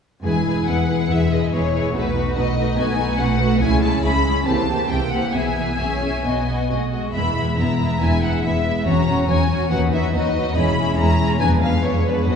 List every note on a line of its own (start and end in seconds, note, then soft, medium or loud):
0.23 0.61 E1 soft
0.23 0.60 E2 soft
0.23 1.96 E3 soft
0.23 0.45 G#3 soft
0.23 0.46 E4 soft
0.23 0.45 G#4 soft
0.23 0.45 B4 soft
0.23 0.65 G#5 soft
0.46 0.68 G#3 soft
0.46 0.89 E4 soft
0.46 0.67 E4 soft
0.46 0.66 G#4 soft
0.46 0.66 B4 soft
0.67 1.04 E1 soft
0.67 1.03 E2 soft
0.67 0.88 G#3 soft
0.67 0.88 E4 soft
0.67 0.88 G#4 soft
0.67 0.88 B4 soft
0.67 1.52 B4 soft
0.67 1.11 F#5 soft
0.89 1.09 G#3 soft
0.89 1.09 E4 soft
0.89 1.31 E4 soft
0.89 1.10 G#4 soft
0.89 1.10 B4 soft
1.10 1.46 E1 soft
1.10 1.46 E2 soft
1.10 1.31 G#3 soft
1.10 4.48 B3 soft
1.10 1.31 E4 soft
1.10 1.32 G#4 soft
1.10 1.31 B4 soft
1.10 1.32 E5 medium
1.32 1.52 G#3 soft
1.32 1.73 E4 soft
1.32 1.52 E4 soft
1.32 1.52 G#4 soft
1.32 1.52 B4 soft
1.32 1.53 D#5 soft
1.51 1.88 E1 soft
1.51 1.87 E2 soft
1.51 1.74 G#3 soft
1.51 1.73 E4 soft
1.51 1.72 G#4 soft
1.51 4.48 B4 soft
1.51 1.73 B4 soft
1.51 1.94 C#5 soft
1.74 1.95 G#3 soft
1.74 1.96 E4 soft
1.74 1.94 E4 soft
1.74 1.94 G#4 soft
1.74 1.93 B4 soft
1.94 2.29 B1 soft
1.94 2.29 B2 soft
1.94 3.63 B2 soft
1.94 2.15 A3 soft
1.94 2.15 D#4 soft
1.94 2.15 F#4 soft
1.94 2.14 B4 soft
1.94 2.36 B4 medium
2.16 2.56 A3 soft
2.16 2.35 A3 soft
2.16 2.35 D#4 soft
2.16 2.35 F#4 soft
2.16 2.35 B4 soft
2.35 2.70 B1 soft
2.35 2.70 B2 soft
2.35 2.57 A3 soft
2.35 2.56 D#4 soft
2.35 2.56 F#4 soft
2.35 2.56 B4 soft
2.35 2.76 D#5 medium
2.35 3.19 D#5 soft
2.57 2.97 A3 soft
2.57 2.76 A3 soft
2.57 2.76 D#4 soft
2.57 2.77 F#4 soft
2.57 2.77 B4 soft
2.76 3.12 B1 medium
2.76 3.12 B2 soft
2.76 3.63 F#3 soft
2.76 2.97 A3 soft
2.76 2.97 D#4 soft
2.76 2.97 F#4 soft
2.76 2.97 B4 soft
2.76 3.19 G#5 medium
2.98 3.18 A3 soft
2.98 3.39 A3 soft
2.98 3.18 D#4 soft
2.98 3.19 F#4 soft
2.98 3.19 B4 soft
3.18 3.54 B1 soft
3.18 3.54 B2 medium
3.18 3.39 A3 soft
3.18 3.39 D#4 soft
3.18 3.40 F#4 soft
3.18 3.40 B4 soft
3.18 3.63 D#5 soft
3.18 3.60 F#5 medium
3.40 3.63 A3 soft
3.40 3.61 A3 soft
3.40 3.61 D#4 soft
3.40 3.61 F#4 soft
3.40 3.61 B4 soft
3.60 3.96 C#2 medium
3.60 3.96 C#3 medium
3.60 4.48 C#3 soft
3.60 3.81 G#3 soft
3.60 3.81 C#4 soft
3.60 3.81 E4 soft
3.60 3.81 G#4 soft
3.60 3.81 G#5 medium
3.82 4.03 G#3 soft
3.82 4.24 G#3 soft
3.82 4.03 C#4 soft
3.82 4.02 E4 soft
3.82 4.02 G#4 soft
3.82 4.03 A5 medium
4.03 4.39 C#2 soft
4.03 4.39 C#3 soft
4.03 4.24 G#3 soft
4.03 4.24 C#4 soft
4.03 4.23 E4 soft
4.03 4.23 G#4 soft
4.03 4.89 E5 soft
4.03 4.45 B5 medium
4.24 4.48 G#3 soft
4.24 4.46 G#3 soft
4.24 4.46 C#4 soft
4.24 4.45 E4 soft
4.24 4.45 G#4 soft
4.45 4.83 C2 medium
4.45 4.82 C3 soft
4.45 5.36 C3 soft
4.45 4.67 E3 soft
4.45 4.67 A#3 soft
4.45 4.67 G4 soft
4.45 4.67 C5 soft
4.45 4.89 A5 medium
4.68 4.90 E3 soft
4.68 5.11 A#3 soft
4.68 4.90 A#3 soft
4.68 4.88 G4 soft
4.68 4.88 C5 soft
4.88 5.27 C2 soft
4.88 5.26 C3 soft
4.88 5.11 E3 soft
4.88 5.11 A#3 soft
4.88 5.11 G4 soft
4.88 5.11 C5 soft
4.88 5.79 E5 soft
4.88 5.11 G5 medium
5.10 5.33 E3 soft
5.10 5.36 A#3 soft
5.10 5.34 A#3 soft
5.10 5.34 G4 soft
5.10 5.34 C5 soft
5.10 5.33 F#5 medium
5.33 5.73 B1 soft
5.33 5.72 B2 soft
5.33 6.24 B2 soft
5.33 5.56 E3 soft
5.33 5.56 B3 soft
5.33 5.55 G#4 soft
5.33 5.56 E5 soft
5.33 6.69 G#5 soft
5.56 5.80 E3 soft
5.56 6.02 B3 soft
5.56 5.79 B3 soft
5.56 5.77 G#4 soft
5.56 5.77 E5 soft
5.78 6.18 B1 soft
5.78 6.17 B2 soft
5.78 6.23 C#4 soft
5.78 6.01 G#4 soft
5.78 6.01 E5 soft
5.78 6.27 E5 soft
6.02 6.46 B3 soft
6.02 6.25 G#4 soft
6.02 6.25 E5 soft
6.25 6.63 B1 soft
6.25 6.62 B2 soft
6.25 7.17 B2 soft
6.25 6.70 B3 soft
6.25 6.45 F#4 soft
6.25 6.45 D#5 soft
6.46 6.92 B3 soft
6.46 6.67 F#4 soft
6.46 6.67 D#5 soft
6.68 7.08 B1 soft
6.68 7.07 B2 soft
6.68 6.79 A3 soft
6.68 6.90 F#4 soft
6.68 6.90 D#5 soft
6.68 7.17 D#5 soft
6.91 7.13 G#3 soft
6.91 7.36 B3 soft
6.91 7.13 F#4 soft
6.91 7.14 D#5 soft
7.13 7.52 E1 soft
7.13 7.51 E2 soft
7.13 8.85 E3 soft
7.13 7.36 G#3 soft
7.13 7.36 B3 soft
7.13 7.35 E4 soft
7.13 7.34 E5 soft
7.13 7.55 B5 medium
7.35 7.58 G#3 soft
7.35 7.78 B3 soft
7.35 7.58 B3 soft
7.35 7.56 E4 soft
7.35 7.56 E5 soft
7.57 7.95 E1 soft
7.57 7.94 E2 soft
7.57 7.79 G#3 soft
7.57 7.79 B3 soft
7.57 7.78 E4 soft
7.57 7.78 E5 soft
7.57 8.43 E5 soft
7.57 8.00 A#5 soft
7.79 8.00 G#3 soft
7.79 8.22 B3 soft
7.79 8.00 B3 soft
7.79 8.00 E4 soft
7.79 8.00 E5 soft
8.01 8.37 E1 soft
8.01 8.37 E2 soft
8.01 8.22 G#3 soft
8.01 8.22 B3 soft
8.01 9.73 E4 soft
8.01 8.21 E4 soft
8.01 8.21 E5 soft
8.01 8.23 G#5 medium
8.23 8.44 G#3 soft
8.23 8.64 B3 soft
8.23 8.44 B3 soft
8.23 8.42 E4 soft
8.23 8.43 E5 soft
8.23 8.44 F#5 medium
8.43 8.80 E1 soft
8.43 8.79 E2 soft
8.43 8.65 G#3 soft
8.43 8.65 B3 soft
8.43 8.64 E4 soft
8.43 8.85 E5 medium
8.43 8.64 E5 soft
8.43 9.73 E5 soft
8.65 8.87 G#3 soft
8.65 8.89 B3 soft
8.65 8.87 B3 soft
8.65 8.86 E4 soft
8.65 8.86 E5 soft
8.86 9.22 E1 soft
8.86 9.22 E2 soft
8.86 9.73 E3 soft
8.86 9.08 F#3 soft
8.86 9.08 C#4 soft
8.86 9.07 F#4 soft
8.86 9.07 C#5 soft
8.86 9.28 A#5 medium
9.08 9.29 F#3 soft
9.08 9.49 C#4 soft
9.08 9.29 C#4 soft
9.08 9.27 F#4 soft
9.08 9.26 C#5 soft
9.28 9.64 E1 medium
9.28 9.64 E2 soft
9.28 9.50 F#3 soft
9.28 9.50 C#4 soft
9.28 9.48 F#4 soft
9.28 9.48 C#5 soft
9.28 9.73 C#5 soft
9.28 9.70 G#5 medium
9.49 9.71 F#3 soft
9.49 9.73 C#4 soft
9.49 9.72 C#4 soft
9.49 9.70 F#4 soft
9.49 9.70 C#5 soft
9.71 10.07 D#2 medium
9.71 10.58 D#3 soft
9.71 9.93 F#3 soft
9.71 9.92 D#4 soft
9.71 9.92 F#4 soft
9.71 9.92 B4 soft
9.71 9.79 F#5 medium
9.92 10.13 F#3 soft
9.92 10.33 D#4 soft
9.92 10.12 D#4 soft
9.92 10.14 F#4 soft
9.92 10.14 B4 soft
9.92 10.13 E5 medium
10.13 10.49 D#2 soft
10.13 10.49 D#2 medium
10.13 10.34 F#3 soft
10.13 10.34 D#4 soft
10.13 10.35 F#4 soft
10.13 11.83 B4 soft
10.13 10.35 B4 soft
10.13 10.55 D#5 medium
10.34 10.56 F#3 soft
10.34 10.57 D#4 soft
10.34 10.56 D#4 soft
10.34 10.57 F#4 soft
10.34 10.57 B4 soft
10.55 10.91 E1 medium
10.55 10.91 E2 medium
10.55 11.42 E3 soft
10.55 10.76 G#3 soft
10.55 10.76 C#4 soft
10.55 10.77 E4 soft
10.55 10.78 G#4 soft
10.55 10.98 B5 medium
10.77 10.97 G#3 soft
10.77 11.18 C#4 soft
10.77 10.97 C#4 soft
10.77 10.98 E4 soft
10.77 10.97 G#4 soft
10.97 11.34 E1 medium
10.97 11.33 E2 soft
10.97 11.18 G#3 soft
10.97 11.18 C#4 soft
10.97 11.17 E4 soft
10.97 11.18 G#4 soft
10.97 11.43 C#5 soft
10.97 11.40 A#5 medium
11.18 11.39 G#3 soft
11.18 11.40 C#4 soft
11.18 11.42 C#4 soft
11.18 11.40 E4 soft
11.18 11.40 G#4 soft
11.39 11.77 F1 medium
11.39 12.30 F2 soft
11.39 11.77 F2 soft
11.39 11.61 G#3 soft
11.39 11.61 B3 soft
11.39 11.61 D4 soft
11.39 11.61 B4 soft
11.39 11.48 G#5 medium
11.61 11.83 G#3 soft
11.61 11.83 B3 soft
11.61 11.82 D4 soft
11.61 12.05 D4 soft
11.61 11.82 B4 soft
11.61 11.83 F5 medium
11.83 12.21 F1 soft
11.83 12.21 F2 soft
11.83 12.06 G#3 soft
11.83 12.06 B3 soft
11.83 12.05 D4 soft
11.83 12.05 B4 soft
11.83 12.36 B4 soft
11.83 12.05 C#5 medium
12.06 12.29 G#3 soft
12.06 12.28 B3 soft
12.06 12.31 D4 soft
12.06 12.29 D4 soft
12.06 12.28 B4 soft
12.06 12.29 B4 soft
12.28 12.36 F#1 soft
12.28 12.36 F#2 soft
12.28 12.36 F#3 soft
12.28 12.36 B3 soft
12.28 12.36 F#4 soft
12.28 12.36 B4 soft
12.28 12.36 D#5 medium